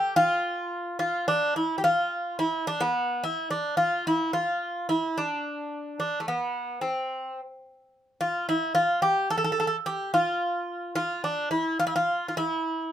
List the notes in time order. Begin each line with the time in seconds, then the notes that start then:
Already playing: G4
0.16 F4
0.99 F4
1.28 D4
1.56 E4
1.78 G4
1.84 F4
2.39 E4
2.67 D4
2.80 B3
3.24 E4
3.51 D4
3.77 F4
4.07 E4
4.33 F4
4.89 E4
5.18 D4
6.00 D4
6.20 A3
6.28 B3
6.81 C4
8.21 F4
8.49 E4
8.75 F4
9.02 G4
9.30 A4
9.38 A4
9.44 A4
9.52 A4
9.60 A4
9.67 A4
9.86 G4
10.14 F4
10.96 F4
11.24 D4
11.51 E4
11.80 F4
11.87 E4
11.96 F4
12.28 F4
12.37 E4